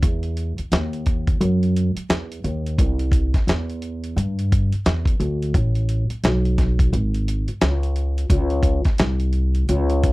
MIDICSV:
0, 0, Header, 1, 4, 480
1, 0, Start_track
1, 0, Tempo, 689655
1, 17, Time_signature, 4, 2, 24, 8
1, 7048, End_track
2, 0, Start_track
2, 0, Title_t, "Upright bass"
2, 0, Program_c, 0, 32
2, 21, Note_on_c, 0, 40, 93
2, 386, Note_off_c, 0, 40, 0
2, 499, Note_on_c, 0, 39, 90
2, 954, Note_off_c, 0, 39, 0
2, 979, Note_on_c, 0, 42, 101
2, 1346, Note_off_c, 0, 42, 0
2, 1458, Note_on_c, 0, 40, 86
2, 1686, Note_off_c, 0, 40, 0
2, 1700, Note_on_c, 0, 39, 88
2, 1927, Note_off_c, 0, 39, 0
2, 1941, Note_on_c, 0, 36, 99
2, 2307, Note_off_c, 0, 36, 0
2, 2417, Note_on_c, 0, 40, 89
2, 2873, Note_off_c, 0, 40, 0
2, 2899, Note_on_c, 0, 43, 91
2, 3265, Note_off_c, 0, 43, 0
2, 3383, Note_on_c, 0, 40, 77
2, 3608, Note_off_c, 0, 40, 0
2, 3617, Note_on_c, 0, 38, 94
2, 3845, Note_off_c, 0, 38, 0
2, 3859, Note_on_c, 0, 33, 104
2, 4226, Note_off_c, 0, 33, 0
2, 4340, Note_on_c, 0, 35, 91
2, 4795, Note_off_c, 0, 35, 0
2, 4821, Note_on_c, 0, 32, 101
2, 5187, Note_off_c, 0, 32, 0
2, 5300, Note_on_c, 0, 37, 88
2, 5755, Note_off_c, 0, 37, 0
2, 5778, Note_on_c, 0, 37, 102
2, 6145, Note_off_c, 0, 37, 0
2, 6262, Note_on_c, 0, 36, 98
2, 6716, Note_off_c, 0, 36, 0
2, 6744, Note_on_c, 0, 37, 103
2, 7048, Note_off_c, 0, 37, 0
2, 7048, End_track
3, 0, Start_track
3, 0, Title_t, "Muted upright bass strokes"
3, 410, Note_on_c, 9, 29, 44
3, 479, Note_off_c, 9, 29, 0
3, 1362, Note_on_c, 9, 29, 44
3, 1431, Note_off_c, 9, 29, 0
3, 2329, Note_on_c, 9, 29, 43
3, 2399, Note_off_c, 9, 29, 0
3, 3291, Note_on_c, 9, 29, 45
3, 3361, Note_off_c, 9, 29, 0
3, 4246, Note_on_c, 9, 29, 46
3, 4316, Note_off_c, 9, 29, 0
3, 5209, Note_on_c, 9, 29, 50
3, 5278, Note_off_c, 9, 29, 0
3, 6164, Note_on_c, 9, 29, 44
3, 6234, Note_off_c, 9, 29, 0
3, 7048, End_track
4, 0, Start_track
4, 0, Title_t, "Drums"
4, 18, Note_on_c, 9, 36, 104
4, 20, Note_on_c, 9, 42, 84
4, 88, Note_off_c, 9, 36, 0
4, 90, Note_off_c, 9, 42, 0
4, 160, Note_on_c, 9, 42, 40
4, 229, Note_off_c, 9, 42, 0
4, 257, Note_on_c, 9, 42, 79
4, 327, Note_off_c, 9, 42, 0
4, 405, Note_on_c, 9, 42, 52
4, 474, Note_off_c, 9, 42, 0
4, 500, Note_on_c, 9, 42, 91
4, 509, Note_on_c, 9, 38, 102
4, 570, Note_off_c, 9, 42, 0
4, 578, Note_off_c, 9, 38, 0
4, 649, Note_on_c, 9, 42, 47
4, 719, Note_off_c, 9, 42, 0
4, 737, Note_on_c, 9, 42, 60
4, 742, Note_on_c, 9, 36, 75
4, 807, Note_off_c, 9, 42, 0
4, 812, Note_off_c, 9, 36, 0
4, 887, Note_on_c, 9, 36, 88
4, 887, Note_on_c, 9, 42, 53
4, 957, Note_off_c, 9, 36, 0
4, 957, Note_off_c, 9, 42, 0
4, 983, Note_on_c, 9, 42, 80
4, 1052, Note_off_c, 9, 42, 0
4, 1134, Note_on_c, 9, 42, 53
4, 1204, Note_off_c, 9, 42, 0
4, 1228, Note_on_c, 9, 42, 74
4, 1298, Note_off_c, 9, 42, 0
4, 1368, Note_on_c, 9, 42, 64
4, 1438, Note_off_c, 9, 42, 0
4, 1461, Note_on_c, 9, 42, 81
4, 1462, Note_on_c, 9, 38, 105
4, 1530, Note_off_c, 9, 42, 0
4, 1532, Note_off_c, 9, 38, 0
4, 1613, Note_on_c, 9, 42, 52
4, 1682, Note_off_c, 9, 42, 0
4, 1702, Note_on_c, 9, 42, 78
4, 1771, Note_off_c, 9, 42, 0
4, 1855, Note_on_c, 9, 42, 52
4, 1924, Note_off_c, 9, 42, 0
4, 1938, Note_on_c, 9, 36, 104
4, 1941, Note_on_c, 9, 42, 81
4, 2008, Note_off_c, 9, 36, 0
4, 2011, Note_off_c, 9, 42, 0
4, 2084, Note_on_c, 9, 42, 39
4, 2153, Note_off_c, 9, 42, 0
4, 2169, Note_on_c, 9, 36, 91
4, 2178, Note_on_c, 9, 42, 73
4, 2239, Note_off_c, 9, 36, 0
4, 2247, Note_off_c, 9, 42, 0
4, 2325, Note_on_c, 9, 42, 48
4, 2326, Note_on_c, 9, 36, 87
4, 2332, Note_on_c, 9, 38, 31
4, 2395, Note_off_c, 9, 42, 0
4, 2396, Note_off_c, 9, 36, 0
4, 2401, Note_off_c, 9, 38, 0
4, 2423, Note_on_c, 9, 42, 91
4, 2432, Note_on_c, 9, 38, 104
4, 2493, Note_off_c, 9, 42, 0
4, 2501, Note_off_c, 9, 38, 0
4, 2573, Note_on_c, 9, 42, 46
4, 2642, Note_off_c, 9, 42, 0
4, 2660, Note_on_c, 9, 42, 55
4, 2729, Note_off_c, 9, 42, 0
4, 2810, Note_on_c, 9, 42, 57
4, 2879, Note_off_c, 9, 42, 0
4, 2908, Note_on_c, 9, 42, 83
4, 2978, Note_off_c, 9, 42, 0
4, 3054, Note_on_c, 9, 42, 54
4, 3124, Note_off_c, 9, 42, 0
4, 3148, Note_on_c, 9, 36, 96
4, 3150, Note_on_c, 9, 42, 73
4, 3218, Note_off_c, 9, 36, 0
4, 3219, Note_off_c, 9, 42, 0
4, 3289, Note_on_c, 9, 42, 59
4, 3358, Note_off_c, 9, 42, 0
4, 3382, Note_on_c, 9, 42, 85
4, 3384, Note_on_c, 9, 38, 102
4, 3452, Note_off_c, 9, 42, 0
4, 3453, Note_off_c, 9, 38, 0
4, 3518, Note_on_c, 9, 36, 106
4, 3532, Note_on_c, 9, 42, 50
4, 3588, Note_off_c, 9, 36, 0
4, 3601, Note_off_c, 9, 42, 0
4, 3623, Note_on_c, 9, 42, 68
4, 3692, Note_off_c, 9, 42, 0
4, 3776, Note_on_c, 9, 42, 55
4, 3845, Note_off_c, 9, 42, 0
4, 3858, Note_on_c, 9, 36, 104
4, 3861, Note_on_c, 9, 42, 84
4, 3927, Note_off_c, 9, 36, 0
4, 3931, Note_off_c, 9, 42, 0
4, 4004, Note_on_c, 9, 42, 45
4, 4074, Note_off_c, 9, 42, 0
4, 4098, Note_on_c, 9, 42, 75
4, 4168, Note_off_c, 9, 42, 0
4, 4247, Note_on_c, 9, 42, 53
4, 4316, Note_off_c, 9, 42, 0
4, 4341, Note_on_c, 9, 42, 91
4, 4349, Note_on_c, 9, 38, 106
4, 4410, Note_off_c, 9, 42, 0
4, 4419, Note_off_c, 9, 38, 0
4, 4492, Note_on_c, 9, 42, 42
4, 4561, Note_off_c, 9, 42, 0
4, 4580, Note_on_c, 9, 42, 56
4, 4581, Note_on_c, 9, 36, 71
4, 4587, Note_on_c, 9, 38, 33
4, 4650, Note_off_c, 9, 42, 0
4, 4651, Note_off_c, 9, 36, 0
4, 4657, Note_off_c, 9, 38, 0
4, 4727, Note_on_c, 9, 36, 91
4, 4731, Note_on_c, 9, 42, 54
4, 4796, Note_off_c, 9, 36, 0
4, 4801, Note_off_c, 9, 42, 0
4, 4827, Note_on_c, 9, 42, 88
4, 4896, Note_off_c, 9, 42, 0
4, 4973, Note_on_c, 9, 42, 58
4, 5042, Note_off_c, 9, 42, 0
4, 5068, Note_on_c, 9, 42, 70
4, 5137, Note_off_c, 9, 42, 0
4, 5205, Note_on_c, 9, 42, 57
4, 5275, Note_off_c, 9, 42, 0
4, 5299, Note_on_c, 9, 42, 74
4, 5300, Note_on_c, 9, 38, 106
4, 5369, Note_off_c, 9, 42, 0
4, 5370, Note_off_c, 9, 38, 0
4, 5451, Note_on_c, 9, 42, 52
4, 5521, Note_off_c, 9, 42, 0
4, 5539, Note_on_c, 9, 42, 73
4, 5608, Note_off_c, 9, 42, 0
4, 5692, Note_on_c, 9, 42, 58
4, 5762, Note_off_c, 9, 42, 0
4, 5775, Note_on_c, 9, 36, 113
4, 5777, Note_on_c, 9, 42, 97
4, 5844, Note_off_c, 9, 36, 0
4, 5847, Note_off_c, 9, 42, 0
4, 5916, Note_on_c, 9, 42, 39
4, 5986, Note_off_c, 9, 42, 0
4, 6004, Note_on_c, 9, 36, 91
4, 6009, Note_on_c, 9, 42, 68
4, 6074, Note_off_c, 9, 36, 0
4, 6078, Note_off_c, 9, 42, 0
4, 6157, Note_on_c, 9, 42, 49
4, 6161, Note_on_c, 9, 36, 94
4, 6163, Note_on_c, 9, 38, 34
4, 6227, Note_off_c, 9, 42, 0
4, 6231, Note_off_c, 9, 36, 0
4, 6233, Note_off_c, 9, 38, 0
4, 6253, Note_on_c, 9, 42, 85
4, 6261, Note_on_c, 9, 38, 111
4, 6322, Note_off_c, 9, 42, 0
4, 6331, Note_off_c, 9, 38, 0
4, 6401, Note_on_c, 9, 42, 46
4, 6471, Note_off_c, 9, 42, 0
4, 6492, Note_on_c, 9, 42, 64
4, 6561, Note_off_c, 9, 42, 0
4, 6645, Note_on_c, 9, 42, 54
4, 6714, Note_off_c, 9, 42, 0
4, 6743, Note_on_c, 9, 42, 85
4, 6812, Note_off_c, 9, 42, 0
4, 6888, Note_on_c, 9, 42, 57
4, 6957, Note_off_c, 9, 42, 0
4, 6984, Note_on_c, 9, 42, 75
4, 6985, Note_on_c, 9, 36, 102
4, 7048, Note_off_c, 9, 36, 0
4, 7048, Note_off_c, 9, 42, 0
4, 7048, End_track
0, 0, End_of_file